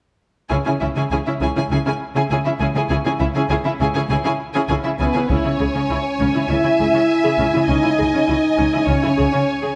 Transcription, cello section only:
0.51 C#3
0.67 C#3
0.81 C#3
0.96 C#3
1.12 C#3
1.26 C#3
1.41 C#3
1.56 C#3
1.71 C#3
1.85 C#3
2.15 C#3
2.31 C#3
2.45 C#3
2.60 C#3
2.74 C#3
2.89 C#3
3.04 C#3
3.19 C#3
3.34 C#3
3.48 C#3
3.64 C#3
3.79 C#3
3.94 C#3
4.09 C#3
4.24 C#3
4.54 C#3
4.69 C#3
4.84 C#3
4.99 C#3
5.15 C#3
5.29 C#3
5.45 C#3
5.59 C#3
5.75 C#3
5.90 C#3
6.20 C#3
6.36 C#3
6.50 C#3
6.65 C#3
6.79 C#3
6.94 C#3
7.24 C#3
7.39 C#3
7.55 C#3
7.69 C#3
7.85 C#3
7.99 C#3
8.14 C#3
8.29 C#3
8.59 C#3
8.75 C#3
8.89 C#3
9.04 C#3
9.18 C#3
9.34 C#3
9.63 C#3

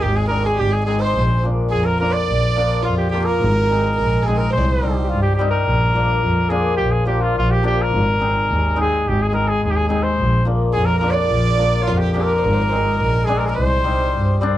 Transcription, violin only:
0.02 G4
0.16 G#4
0.29 A#4
0.46 G#4
0.57 G4
0.71 G#4
0.84 G#4
0.98 C5
1.69 G#4
1.83 A#4
2.00 A#4
2.11 D5
2.82 F4
3.11 G4
3.23 A#4
3.97 A#4
4.22 G#4
4.36 A#4
4.50 C5
4.57 D5
4.64 C5
10.73 G#4
10.87 A#4
11.14 D5
11.87 F4
12.02 G4
12.16 G4
12.29 A#4
12.38 C5
12.44 A#4
12.53 C5
12.62 A#4
12.69 C5
12.76 A#4
13.01 A#4
13.27 G#4
13.40 A#4
13.50 A#4
13.55 C5

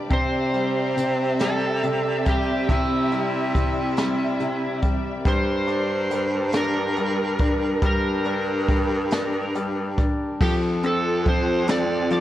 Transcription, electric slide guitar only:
0.13 C5
1.42 A4
2.29 G4
2.71 E4
5.28 C5
6.57 A#4
7.86 A#4
10.43 G4
10.86 A4
11.28 C5
11.70 D5
12.13 D5

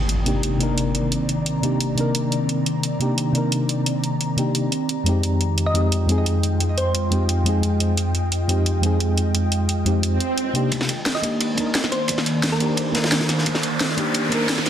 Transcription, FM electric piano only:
0.25 C3 A#3 D4 D#4 G4
0.58 C3 A#3 D4
0.62 D#4 A#4
1.62 C3 A#3 D4 D#4 G4
1.95 C3 A#3 D4
1.99 D#4 A#4
2.99 C3 A#3 D4 D#4 G4
3.32 C3 A#3 D4
3.36 D#4 A#4
4.36 C3 A#3 D4 D#4 G4
5.04 F2 G#3 C4
5.08 D#4 G4
5.73 F2 G#3 C4 D#4 G4
6.06 F2 G#3 C4
6.10 D#4 G#4
7.10 F2 G#3 C4 D#4 G4
7.43 F2 G#3 C4
7.48 D#4 G#4
8.48 F2 G#3 C4 D#4 G4
8.81 F2 G#3 C4
8.85 D#4 G#4
9.85 F2 G#3 C4 D#4 G4
10.53 C3 A#3 D4 D#4 G4
11.22 A#3 D4 D#4 G4
11.55 A#3 D4 D#4
11.61 A#4
12.59 A#3 D4 D#4 G4
12.92 A#3 D4 D#4
12.97 A#4
13.96 A#3 D4 D#4 G4
14.29 A#3 D4 D#4
14.35 A#4

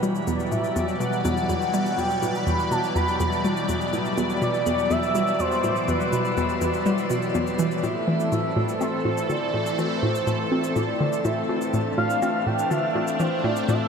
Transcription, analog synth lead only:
0.52 E5
1.00 F#5
1.25 F#5
1.98 G5
2.35 B5
2.71 A5
2.96 B5
4.42 D5
4.91 E5
5.40 C5
5.88 B4
7.83 E5
8.81 C5
9.30 D5
9.79 C5
10.76 D5
11.25 E5
11.98 F5
12.46 G5
12.71 E5
13.20 C5
13.44 D5
13.68 E5

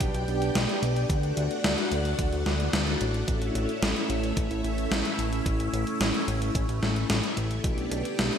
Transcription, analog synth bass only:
0.01 B1
0.14 B1
0.28 B1
0.55 B1
0.82 B1
1.10 D2
1.37 D2
1.64 D2
1.92 D2
2.19 D2
2.33 D2
2.46 D2
2.73 D2
3.01 A1
3.28 A1
3.55 A1
3.82 A1
4.10 A1
4.37 A1
4.51 A1
4.64 A1
4.91 A1
5.19 A1
5.46 A1
5.73 A1
6.01 A1
6.28 A1
6.55 A1
6.69 A1
6.82 A1
7.10 A1
7.37 A1
7.64 B1
7.92 B1
8.19 B1

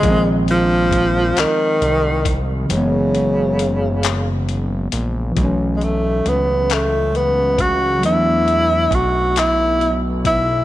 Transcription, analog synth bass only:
0.04 A#1
1.37 C2
1.82 C2
2.71 F#1
4.93 A#1
5.37 B1
6.26 C#2
8.04 E2
8.91 B1

